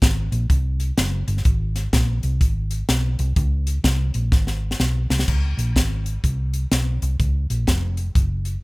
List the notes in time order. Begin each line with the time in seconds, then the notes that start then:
0.02 G#1, kick, snare, closed hi-hat
0.32 A#1, closed hi-hat
0.50 C2, kick, closed hi-hat
0.80 closed hi-hat
0.97 F#1, snare, closed hi-hat
1.27 G1, closed hi-hat
1.37 snare
1.45 G#1, kick, closed hi-hat
1.76 snare, closed hi-hat
1.93 A#1, kick, snare, closed hi-hat
2.23 C2, closed hi-hat
2.41 G#1, kick, closed hi-hat
2.71 closed hi-hat
2.89 B1, snare, closed hi-hat
3.19 C2, closed hi-hat
3.36 C#2, kick, closed hi-hat
3.67 closed hi-hat
3.84 C2, kick, snare, closed hi-hat
4.14 A#1, closed hi-hat
4.32 G#1, kick, snare
4.47 snare
4.71 snare
4.79 B1, snare
5.10 C2, snare
5.19 snare
5.28 C#2, kick, crash
5.57 A#1, closed hi-hat
5.76 G#1, kick, snare, closed hi-hat
6.06 closed hi-hat
6.24 C2, kick, closed hi-hat
6.54 closed hi-hat
6.71 B1, snare, closed hi-hat
7.02 C2, closed hi-hat
7.19 C#2, kick, closed hi-hat
7.50 A#1, closed hi-hat
7.67 F1, kick, snare, closed hi-hat
7.97 closed hi-hat
8.15 F#1, kick, closed hi-hat
8.45 closed hi-hat